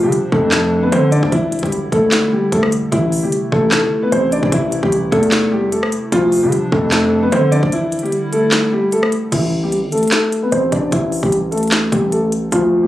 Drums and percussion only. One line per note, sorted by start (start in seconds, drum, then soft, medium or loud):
0.12 closed hi-hat medium
0.32 kick loud
0.52 snare loud
0.52 clap medium
0.52 closed hi-hat medium
0.92 closed hi-hat medium
1.12 closed hi-hat medium
1.23 kick loud
1.32 kick loud
1.32 closed hi-hat loud
1.52 closed hi-hat medium
1.52 open hi-hat medium
1.59 closed hi-hat medium
1.63 kick medium
1.63 closed hi-hat soft
1.72 closed hi-hat medium
1.92 kick loud
1.92 closed hi-hat medium
2.12 snare loud
2.12 clap medium
2.12 closed hi-hat medium
2.52 kick loud
2.52 closed hi-hat medium
2.63 cross-stick loud
2.72 closed hi-hat medium
2.92 kick loud
2.92 closed hi-hat loud
3.12 open hi-hat medium
3.32 closed hi-hat medium
3.52 kick loud
3.72 snare loud
3.72 clap medium
3.72 closed hi-hat medium
4.12 closed hi-hat medium
4.32 closed hi-hat medium
4.43 kick loud
4.52 kick loud
4.52 closed hi-hat loud
4.72 closed hi-hat medium
4.83 kick loud
4.92 closed hi-hat medium
5.12 kick loud
5.12 closed hi-hat soft
5.23 closed hi-hat medium
5.32 snare loud
5.32 clap medium
5.32 closed hi-hat medium
5.72 closed hi-hat medium
5.83 cross-stick loud
5.92 closed hi-hat medium
6.12 kick loud
6.12 closed hi-hat loud
6.32 open hi-hat medium
6.52 closed hi-hat medium
6.72 kick loud
6.92 snare loud
6.92 clap medium
6.92 closed hi-hat medium
7.32 closed hi-hat medium
7.52 closed hi-hat medium
7.63 kick loud
7.72 closed hi-hat loud
7.92 closed hi-hat medium
7.92 open hi-hat medium
7.99 closed hi-hat medium
8.06 closed hi-hat soft
8.12 closed hi-hat medium
8.33 closed hi-hat medium
8.52 snare loud
8.52 clap medium
8.52 closed hi-hat medium
8.92 closed hi-hat medium
9.03 cross-stick loud
9.12 closed hi-hat medium
9.32 kick loud
9.32 closed hi-hat medium
9.32 crash medium
9.72 closed hi-hat medium
9.92 closed hi-hat medium
9.98 closed hi-hat medium
10.03 closed hi-hat medium
10.08 closed hi-hat medium
10.12 snare loud
10.12 clap medium
10.12 closed hi-hat medium
10.32 closed hi-hat medium
10.52 closed hi-hat medium
10.72 kick medium
10.72 closed hi-hat medium
10.92 kick loud
10.92 closed hi-hat medium
11.12 open hi-hat medium
11.23 kick loud
11.32 closed hi-hat medium
11.52 closed hi-hat medium
11.58 closed hi-hat medium
11.63 closed hi-hat medium
11.68 closed hi-hat medium
11.72 snare loud
11.72 clap medium
11.72 closed hi-hat medium
11.92 kick medium
11.92 closed hi-hat medium
12.12 closed hi-hat medium
12.32 closed hi-hat medium
12.52 kick loud
12.52 closed hi-hat loud